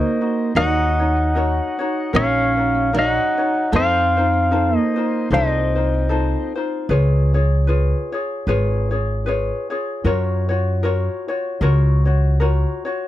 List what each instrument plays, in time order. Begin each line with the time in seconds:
Already playing: steel-string acoustic guitar A#3, ukulele D#4 F#4 A#4, pedal steel guitar C5 D#5
0.21 ukulele D#4 F#4
0.55 upright bass D#2, ukulele D#4 F#4 A#4 C#5, steel-string acoustic guitar D#4, pedal steel guitar D#5 F#5
0.99 ukulele D#4 F#4 C#5
1.35 ukulele D#4 F#4 A#4 C#5
1.79 ukulele D#4 F#4 C#5
2.13 upright bass A#1, steel-string acoustic guitar C#4, ukulele D#4 F#4 A#4 C#5, pedal steel guitar F5
2.17 pedal steel guitar C#5
2.57 ukulele D#4 F#4 C#5
2.93 ukulele D#4 F#4 A#4 C#5, steel-string acoustic guitar D#4
2.99 pedal steel guitar D#5 F#5
3.38 ukulele D#4 F#4 C#5
3.72 upright bass F2, steel-string acoustic guitar C4, ukulele D#4 F4 A4 C5, pedal steel guitar C5
3.76 pedal steel guitar F5
4.17 ukulele D#4 F4 C5
4.51 ukulele D#4 F4 A4 C5
4.75 steel-string acoustic guitar A#3, pedal steel guitar D#5
4.96 ukulele D#4 F4 C5
5.30 upright bass C2, steel-string acoustic guitar C4, ukulele D#4 F4 A4 C5, pedal steel guitar C5 D#5
5.76 ukulele D#4 F4 C5
6.09 ukulele D#4 F4 A4 C5
6.55 ukulele D#4 F4 C5
6.89 upright bass C#2, ukulele F4 G#4 B4 C#5
7.34 ukulele F4 G#4 C#5
7.67 ukulele F4 G#4 B4 C#5
8.12 ukulele F4 G#4 C#5
8.47 upright bass G#1, ukulele F4 G#4 B4 C#5
8.91 ukulele F4 G#4 C#5
9.26 ukulele F4 G#4 B4 C#5
9.70 ukulele F4 G#4 C#5
10.04 upright bass F#2, ukulele F4 F#4 A#4 C#5
10.49 ukulele F4 F#4 C#5
10.83 ukulele F4 F#4 A#4 C#5
11.28 ukulele F4 F#4 C#5
11.61 upright bass C#2, ukulele F4 F#4 A#4 C#5
12.05 ukulele F4 F#4 C#5
12.40 ukulele F4 F#4 A#4 C#5
12.85 ukulele F4 F#4 C#5